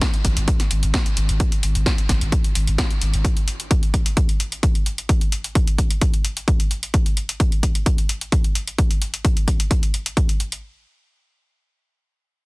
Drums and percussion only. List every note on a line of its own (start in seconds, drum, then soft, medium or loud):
0.01 kick loud
0.01 snare loud
0.01 closed hi-hat medium
0.14 closed hi-hat medium
0.25 kick medium
0.25 open hi-hat loud
0.37 closed hi-hat medium
0.48 kick loud
0.48 closed hi-hat medium
0.60 snare soft
0.60 closed hi-hat medium
0.71 open hi-hat loud
0.83 closed hi-hat medium
0.94 kick loud
0.94 snare loud
0.94 closed hi-hat loud
1.06 closed hi-hat soft
1.17 open hi-hat loud
1.29 closed hi-hat medium
1.40 kick loud
1.40 closed hi-hat medium
1.52 closed hi-hat medium
1.63 open hi-hat loud
1.75 closed hi-hat soft
1.86 kick loud
1.86 snare loud
1.86 closed hi-hat medium
1.98 closed hi-hat soft
2.09 kick medium
2.09 snare soft
2.09 open hi-hat loud
2.21 closed hi-hat medium
2.32 kick loud
2.32 closed hi-hat medium
2.44 closed hi-hat medium
2.55 open hi-hat loud
2.67 closed hi-hat medium
2.78 kick loud
2.78 snare loud
2.78 closed hi-hat medium
2.91 closed hi-hat soft
3.02 open hi-hat loud
3.14 closed hi-hat soft
3.25 kick loud
3.25 closed hi-hat medium
3.37 closed hi-hat soft
3.48 closed hi-hat medium
3.60 closed hi-hat soft
3.71 kick loud
3.71 closed hi-hat medium
3.83 closed hi-hat soft
3.94 kick medium
3.94 closed hi-hat medium
4.06 closed hi-hat medium
4.17 kick loud
4.17 closed hi-hat medium
4.29 closed hi-hat soft
4.40 closed hi-hat medium
4.52 closed hi-hat soft
4.63 kick loud
4.63 closed hi-hat medium
4.75 closed hi-hat soft
4.86 closed hi-hat medium
4.98 closed hi-hat soft
5.09 kick loud
5.09 closed hi-hat medium
5.21 closed hi-hat soft
5.32 closed hi-hat medium
5.44 closed hi-hat soft
5.55 kick loud
5.55 closed hi-hat medium
5.67 closed hi-hat soft
5.78 kick medium
5.78 closed hi-hat medium
5.91 closed hi-hat soft
6.01 kick loud
6.01 closed hi-hat medium
6.14 closed hi-hat soft
6.25 closed hi-hat medium
6.37 closed hi-hat soft
6.48 kick loud
6.48 closed hi-hat medium
6.60 closed hi-hat soft
6.71 closed hi-hat medium
6.83 closed hi-hat soft
6.94 kick loud
6.94 closed hi-hat medium
7.06 closed hi-hat soft
7.17 closed hi-hat medium
7.29 closed hi-hat medium
7.40 kick loud
7.40 closed hi-hat medium
7.52 closed hi-hat soft
7.63 kick medium
7.63 closed hi-hat medium
7.75 closed hi-hat medium
7.86 kick loud
7.86 closed hi-hat medium
7.98 closed hi-hat medium
8.09 closed hi-hat medium
8.21 closed hi-hat soft
8.32 kick loud
8.32 closed hi-hat medium
8.44 closed hi-hat soft
8.55 closed hi-hat medium
8.68 closed hi-hat soft
8.78 kick loud
8.78 closed hi-hat medium
8.91 closed hi-hat soft
9.02 closed hi-hat medium
9.14 closed hi-hat soft
9.25 kick loud
9.25 closed hi-hat medium
9.37 closed hi-hat soft
9.48 kick medium
9.48 closed hi-hat medium
9.60 closed hi-hat medium
9.71 kick loud
9.71 closed hi-hat medium
9.83 closed hi-hat medium
9.94 closed hi-hat medium
10.06 closed hi-hat medium
10.17 kick loud
10.17 closed hi-hat medium
10.29 closed hi-hat soft
10.40 closed hi-hat medium
10.52 closed hi-hat medium